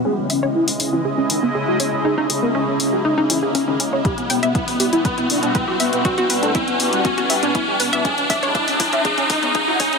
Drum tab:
HH |--o--oo---o---o-|--o---o---o-o-o-|xxoxxooxxxoxx-ox|xxoxxxoxxxoxx-ox|
BD |----------------|----------------|o---o---o---o---|o---o---o---o---|

HH |xxoxxooxxxoxx-ox|
BD |o-o-o-o-o-o-o-o-|